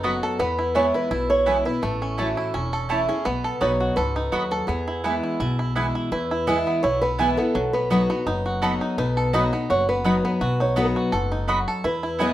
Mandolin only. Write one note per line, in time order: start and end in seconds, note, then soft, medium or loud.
0.03 0.13 B3 medium
0.03 0.13 F#4 medium
0.03 0.14 D#5 medium
0.03 0.14 B5 loud
0.75 0.85 B3 medium
0.75 0.85 E4 medium
0.75 0.85 B4 medium
0.75 0.85 G#5 loud
1.46 1.56 B3 medium
1.46 1.56 E4 medium
1.46 1.56 B4 medium
1.46 1.56 G#5 medium
2.18 2.27 A3 medium
2.18 2.28 E4 loud
2.18 2.28 C#5 medium
2.18 2.28 A5 medium
2.89 2.99 A3 medium
2.89 2.99 E4 medium
2.89 2.99 C#5 loud
2.89 3.00 A5 medium
3.61 3.71 B3 medium
3.61 3.71 F#4 medium
3.61 3.71 D#5 loud
3.61 3.71 B5 loud
4.32 4.42 B3 medium
4.32 4.42 F#4 loud
4.32 4.42 D#5 loud
4.32 4.43 B5 medium
5.04 5.14 B3 medium
5.04 5.14 E4 medium
5.04 5.14 B4 medium
5.04 5.14 G#5 medium
5.75 5.85 B3 medium
5.75 5.85 E4 medium
5.75 5.86 B4 loud
5.75 5.86 G#5 loud
6.47 6.57 B3 medium
6.47 6.57 E4 medium
6.47 6.57 B4 loud
6.47 6.57 G#5 loud
7.18 7.28 B3 medium
7.18 7.29 E4 medium
7.18 7.29 B4 medium
7.18 7.29 G#5 loud
7.90 8.00 B3 medium
7.90 8.00 F#4 medium
7.90 8.00 D#5 loud
7.90 8.01 B5 loud
8.62 8.72 B3 medium
8.62 8.72 F#4 medium
8.62 8.72 D#5 medium
8.62 8.72 B5 medium
9.33 9.43 B3 medium
9.33 9.43 F#4 medium
9.33 9.44 D#5 medium
9.33 9.44 B5 loud
10.04 10.14 B3 medium
10.04 10.15 F#4 loud
10.04 10.15 D#5 loud
10.04 10.15 B5 loud
10.76 10.86 B3 medium
10.76 10.86 F#4 medium
10.76 10.86 D#5 medium
10.76 10.87 B5 medium
11.48 11.58 B3 medium
11.48 11.58 F#4 medium
11.48 11.58 D#5 medium
11.48 11.58 B5 loud
12.19 12.29 B3 medium
12.19 12.29 E4 medium
12.19 12.29 B4 medium
12.19 12.29 G#5 loud